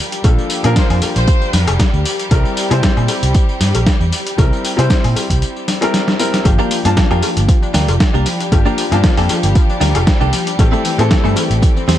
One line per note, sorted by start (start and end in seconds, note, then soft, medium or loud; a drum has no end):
0.00 0.21 F3 loud
0.00 6.44 G3 medium
0.00 0.22 A#3 medium
0.00 0.22 D4 medium
0.00 6.44 G4 medium
0.00 0.22 A#4 loud
0.12 closed hi-hat medium
0.12 tambourine soft
0.24 0.35 A#1 loud
0.24 0.61 F3 medium
0.24 0.61 A#3 medium
0.24 0.61 D4 medium
0.24 0.61 A4 medium
0.24 kick loud
0.24 closed hi-hat medium
0.24 tambourine soft
0.24 cowbell medium
0.38 tambourine soft
0.50 open hi-hat loud
0.50 tambourine medium
0.64 0.74 A#2 medium
0.64 2.28 F3 loud
0.64 2.29 A#3 medium
0.64 2.29 D4 medium
0.64 2.29 A#4 loud
0.64 closed hi-hat medium
0.64 tambourine soft
0.64 high woodblock medium
0.76 0.85 C5 medium
0.76 kick loud
0.76 snare loud
0.76 closed hi-hat medium
0.76 tambourine soft
0.90 1.00 F2 medium
0.90 0.98 C5 medium
0.90 open hi-hat medium
0.90 tambourine soft
0.90 high woodblock medium
1.02 muted fingered electric bass stroke soft
1.02 open hi-hat loud
1.02 tambourine medium
1.02 cowbell medium
1.16 1.25 A#1 medium
1.16 1.88 C5 loud
1.16 closed hi-hat medium
1.16 tambourine soft
1.28 kick loud
1.28 closed hi-hat medium
1.28 tambourine soft
1.42 tambourine soft
1.53 1.65 F2 medium
1.53 snare medium
1.53 open hi-hat loud
1.53 tambourine medium
1.67 1.77 F1 medium
1.67 closed hi-hat medium
1.67 tambourine soft
1.67 cowbell loud
1.67 high woodblock medium
1.80 kick loud
1.80 snare loud
1.80 closed hi-hat medium
1.80 tambourine soft
1.94 2.03 D2 medium
1.94 tambourine soft
2.05 open hi-hat loud
2.05 tambourine medium
2.19 closed hi-hat medium
2.19 tambourine soft
2.31 2.42 C2 loud
2.31 2.68 G3 medium
2.31 2.68 C4 medium
2.31 2.68 E4 medium
2.31 2.68 A#4 medium
2.31 kick loud
2.31 closed hi-hat medium
2.31 tambourine soft
2.31 cowbell medium
2.45 tambourine soft
2.57 open hi-hat loud
2.57 tambourine medium
2.70 2.80 C3 medium
2.70 4.35 G3 loud
2.70 4.35 C4 medium
2.70 4.36 E4 medium
2.70 4.36 C5 loud
2.70 closed hi-hat medium
2.70 tambourine soft
2.70 high woodblock medium
2.83 kick loud
2.83 snare loud
2.83 closed hi-hat medium
2.83 tambourine soft
2.97 3.06 A#2 medium
2.97 tambourine soft
2.97 high woodblock medium
3.08 open hi-hat loud
3.08 tambourine medium
3.08 cowbell medium
3.23 3.32 C2 medium
3.23 closed hi-hat medium
3.23 tambourine soft
3.34 kick loud
3.34 closed hi-hat medium
3.34 tambourine soft
3.49 tambourine soft
3.61 3.72 G2 medium
3.61 snare medium
3.61 open hi-hat loud
3.61 tambourine medium
3.75 3.84 A#1 medium
3.75 closed hi-hat medium
3.75 tambourine soft
3.75 cowbell medium
3.86 kick loud
3.86 snare loud
3.86 closed hi-hat medium
3.86 tambourine soft
4.01 4.10 E2 medium
4.01 tambourine soft
4.12 open hi-hat loud
4.12 tambourine medium
4.27 closed hi-hat medium
4.27 tambourine soft
4.38 4.49 C2 loud
4.38 4.75 G3 medium
4.38 4.75 C4 medium
4.38 4.75 E4 medium
4.38 4.75 A#4 medium
4.38 kick loud
4.38 closed hi-hat medium
4.38 tambourine soft
4.38 cowbell medium
4.53 tambourine soft
4.65 open hi-hat loud
4.65 tambourine medium
4.77 4.88 C3 medium
4.77 5.78 G3 loud
4.77 5.79 C4 medium
4.77 5.79 E4 medium
4.77 5.79 C5 loud
4.77 closed hi-hat medium
4.77 tambourine soft
4.77 high woodblock medium
4.90 kick loud
4.90 snare loud
4.90 closed hi-hat medium
4.90 tambourine soft
5.04 5.14 A#2 medium
5.04 open hi-hat medium
5.04 tambourine soft
5.04 high woodblock medium
5.16 muted fingered electric bass stroke soft
5.16 open hi-hat loud
5.16 tambourine medium
5.16 cowbell medium
5.30 5.42 C2 medium
5.30 kick medium
5.30 closed hi-hat medium
5.30 tambourine soft
5.42 closed hi-hat medium
5.42 tambourine soft
5.56 tambourine soft
5.68 snare medium
5.68 open hi-hat loud
5.68 tambourine medium
5.81 6.16 G3 medium
5.81 6.16 C4 medium
5.81 6.17 E4 medium
5.81 6.17 A#4 loud
5.81 closed hi-hat medium
5.81 tambourine soft
5.81 cowbell medium
5.81 high woodblock medium
5.94 snare medium
5.94 closed hi-hat medium
5.94 tambourine soft
6.08 snare medium
6.08 tambourine soft
6.19 6.42 G3 medium
6.19 6.43 C4 medium
6.19 6.43 E4 medium
6.19 6.43 A#4 loud
6.19 open hi-hat loud
6.19 tambourine medium
6.34 snare medium
6.34 closed hi-hat medium
6.34 tambourine soft
6.45 6.56 G1 loud
6.45 6.82 F3 medium
6.45 6.55 F3 loud
6.45 11.98 G3 medium
6.45 6.82 A#3 medium
6.45 6.82 D4 medium
6.45 11.98 G4 medium
6.45 6.82 G4 medium
6.45 kick loud
6.45 closed hi-hat medium
6.45 tambourine soft
6.45 cowbell medium
6.59 6.67 A#3 loud
6.59 6.78 D4 loud
6.59 6.78 F4 medium
6.59 6.78 G4 loud
6.59 6.78 A#4 loud
6.59 tambourine soft
6.71 6.77 F3 loud
6.71 open hi-hat loud
6.71 tambourine medium
6.85 6.94 G2 medium
6.85 8.49 F3 loud
6.85 8.49 A#3 medium
6.85 6.93 D4 medium
6.85 8.50 D4 medium
6.85 8.50 A5 loud
6.85 closed hi-hat medium
6.85 tambourine soft
6.85 high woodblock medium
6.96 7.06 F3 loud
6.96 muted clean electric guitar stroke soft
6.96 kick loud
6.96 snare loud
6.96 closed hi-hat medium
6.96 tambourine soft
7.11 7.20 F2 medium
7.11 7.19 A#3 loud
7.11 7.30 D4 medium
7.11 7.30 F4 medium
7.11 7.30 G4 medium
7.11 7.30 A#4 medium
7.11 tambourine soft
7.11 high woodblock medium
7.22 7.32 F3 loud
7.22 open hi-hat loud
7.22 tambourine medium
7.22 cowbell medium
7.37 7.46 G1 medium
7.37 7.45 A#3 medium
7.37 closed hi-hat medium
7.37 tambourine soft
7.48 7.58 F3 loud
7.48 muted clean electric guitar stroke soft
7.48 kick loud
7.48 closed hi-hat medium
7.48 tambourine soft
7.63 7.71 D4 loud
7.63 tambourine soft
7.74 7.85 D2 medium
7.74 7.88 F3 medium
7.74 7.94 D4 loud
7.74 7.94 F4 medium
7.74 7.94 G4 loud
7.74 7.95 A#4 loud
7.74 snare medium
7.74 open hi-hat loud
7.74 tambourine medium
7.88 7.98 F1 medium
7.88 7.97 F4 medium
7.88 closed hi-hat medium
7.88 tambourine soft
7.88 cowbell medium
8.00 8.10 F3 loud
8.00 kick loud
8.00 snare loud
8.00 closed hi-hat medium
8.00 tambourine soft
8.14 8.24 C2 medium
8.14 8.19 A#3 medium
8.14 8.26 D4 medium
8.14 8.26 F4 medium
8.14 8.26 G4 medium
8.14 8.26 A#4 medium
8.14 tambourine soft
8.26 8.40 F3 loud
8.26 open hi-hat loud
8.26 tambourine medium
8.40 8.49 D4 medium
8.40 muted clean electric guitar stroke soft
8.40 closed hi-hat medium
8.40 tambourine soft
8.52 8.63 G1 loud
8.52 8.89 F3 medium
8.52 8.62 F3 loud
8.52 8.89 A#3 medium
8.52 8.89 D4 medium
8.52 8.89 G4 medium
8.52 kick loud
8.52 closed hi-hat medium
8.52 tambourine soft
8.52 cowbell medium
8.66 8.74 A#3 loud
8.66 8.85 D4 loud
8.66 8.85 F4 medium
8.66 8.85 G4 loud
8.66 8.85 A#4 loud
8.66 tambourine soft
8.78 8.84 F3 loud
8.78 open hi-hat loud
8.78 tambourine medium
8.91 9.01 G2 medium
8.91 10.56 F3 loud
8.91 10.56 A#3 medium
8.91 9.00 D4 medium
8.91 10.57 D4 medium
8.91 10.57 A5 loud
8.91 closed hi-hat medium
8.91 tambourine soft
8.91 high woodblock medium
9.04 9.13 F3 loud
9.04 muted clean electric guitar stroke soft
9.04 kick loud
9.04 snare loud
9.04 closed hi-hat medium
9.04 tambourine soft
9.17 9.27 F2 medium
9.17 9.26 A#3 loud
9.17 9.37 D4 medium
9.17 9.37 F4 medium
9.17 9.37 G4 medium
9.17 9.37 A4 loud
9.17 open hi-hat medium
9.17 tambourine soft
9.17 high woodblock medium
9.29 9.40 F3 loud
9.29 muted fingered electric bass stroke soft
9.29 open hi-hat loud
9.29 tambourine medium
9.29 cowbell medium
9.43 9.53 G1 medium
9.43 9.52 A#3 medium
9.43 closed hi-hat medium
9.43 tambourine soft
9.55 9.65 F3 loud
9.55 muted clean electric guitar stroke soft
9.55 kick loud
9.55 closed hi-hat medium
9.55 tambourine soft
9.69 9.78 D4 loud
9.69 tambourine soft
9.80 9.92 D2 medium
9.80 9.95 F3 medium
9.80 10.01 D4 loud
9.80 10.01 F4 medium
9.80 10.01 G4 loud
9.80 10.01 A#4 loud
9.80 snare medium
9.80 open hi-hat loud
9.80 tambourine medium
9.95 10.05 F1 medium
9.95 10.04 F4 medium
9.95 closed hi-hat medium
9.95 tambourine soft
9.95 cowbell medium
9.95 high woodblock medium
10.07 10.17 F3 loud
10.07 kick loud
10.07 snare loud
10.07 closed hi-hat medium
10.07 tambourine soft
10.20 10.31 C2 medium
10.20 10.26 A#3 medium
10.20 10.33 D4 medium
10.20 10.33 F4 medium
10.20 10.33 G4 medium
10.20 10.33 A4 medium
10.20 tambourine soft
10.33 10.47 F3 loud
10.33 open hi-hat loud
10.33 tambourine medium
10.46 10.55 D4 medium
10.46 muted clean electric guitar stroke soft
10.46 closed hi-hat medium
10.46 tambourine soft
10.59 10.70 A1 loud
10.59 10.96 E3 medium
10.59 10.69 E3 loud
10.59 10.96 A3 medium
10.59 10.96 C4 medium
10.59 10.96 G4 medium
10.59 kick loud
10.59 closed hi-hat soft
10.59 tambourine soft
10.59 cowbell loud
10.72 10.81 A3 loud
10.72 10.91 C4 loud
10.72 10.92 E4 medium
10.72 10.92 G4 loud
10.72 10.92 A4 loud
10.72 tambourine soft
10.85 10.91 E3 loud
10.85 open hi-hat loud
10.85 tambourine medium
10.98 11.08 A2 medium
10.98 11.98 E3 loud
10.98 11.98 A3 loud
10.98 11.07 C4 medium
10.98 11.98 C4 medium
10.98 11.98 A4 loud
10.98 closed hi-hat medium
10.98 tambourine soft
10.98 high woodblock medium
11.10 11.20 E3 loud
11.10 muted clean electric guitar stroke soft
11.10 kick loud
11.10 snare loud
11.10 closed hi-hat medium
11.10 tambourine soft
11.24 11.34 G2 medium
11.24 11.33 A3 loud
11.24 11.43 C4 medium
11.24 11.43 E4 medium
11.24 11.43 G4 medium
11.24 11.43 A4 medium
11.24 tambourine soft
11.24 high woodblock medium
11.36 11.46 E3 loud
11.36 open hi-hat loud
11.36 tambourine medium
11.36 cowbell medium
11.50 11.60 A1 medium
11.50 11.59 A3 medium
11.50 closed hi-hat medium
11.50 tambourine soft
11.62 11.72 E3 loud
11.62 muted clean electric guitar stroke soft
11.62 kick loud
11.62 closed hi-hat medium
11.62 tambourine soft
11.76 11.85 C4 loud
11.76 tambourine soft
11.88 11.98 E2 medium
11.88 11.98 E3 medium
11.88 11.98 C4 loud
11.88 11.98 E4 medium
11.88 11.98 G4 loud
11.88 11.98 C5 loud
11.88 snare medium
11.88 open hi-hat loud
11.88 tambourine medium